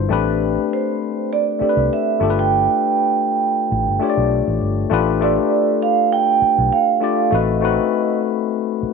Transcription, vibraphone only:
0.73 C5
1.33 D5
1.93 E5
2.39 G5
5.22 D5
5.83 F5
6.13 G5
6.73 F5
7.33 D#5

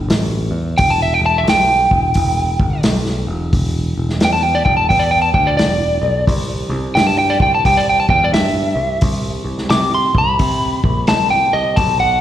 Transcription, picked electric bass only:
0.08 A1
0.51 E2
0.79 E1
1.19 E1
1.44 B1
1.91 E1
2.16 E1
2.59 G1
2.85 B1
3.27 E1
3.52 E1
3.97 E1
4.22 E2
4.65 E1
4.91 E2
5.34 D2
5.57 E1
6.02 B1
6.27 C2
6.69 C2
6.95 G2
7.40 C2
7.65 C2
8.09 E2
8.32 G2
8.76 C2
9.02 C2
9.44 C2
9.70 C3
10.15 C2
10.39 C3
10.84 A#1
11.09 C2
11.53 C2
11.77 B1

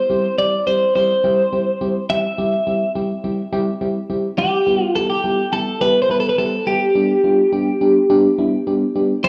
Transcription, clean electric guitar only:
Already playing: C5
0.38 D5
0.67 C5
0.96 C5
2.10 E5
4.38 G4
4.84 F4
4.95 A4
5.10 G4
5.53 A4
5.81 B4
6.02 C5
6.11 B4
6.20 A4
6.29 B4
6.38 A4
6.67 G4
9.24 D5

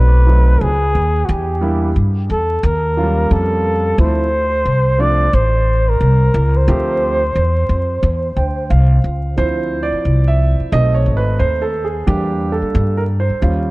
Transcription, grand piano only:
Already playing: F#3 A3 C4 D#4
0.26 F#3 A3 C4 D#4
1.61 G3 A#3 D4 E4
2.97 F#3 A#3 C#4 F4
3.03 G3
3.98 F3 A3 C4 E4
4.98 F3 A3 C4 D4
6.68 F3 A3 C4 G4
8.37 G5
8.70 F5
9.37 F3 C4 E4 C5
9.83 D5
10.28 E5
10.72 A3 C4 D#4 D#5
10.94 C#5
11.17 B4
11.39 C5
11.62 A4
11.85 G#4
12.07 G3 A#3 D4 G4
12.52 A4
12.97 A#4
13.20 C5
13.42 G3 C#4 F4

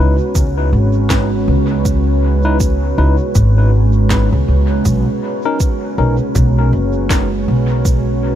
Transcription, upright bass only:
0.00 C#2
0.35 C#2
0.73 G#1
1.48 C#2
2.98 C#2
3.35 G#1
4.32 C#2
4.48 C#2
4.85 B1
5.98 B1
6.35 B1
6.73 F#1
7.48 B1

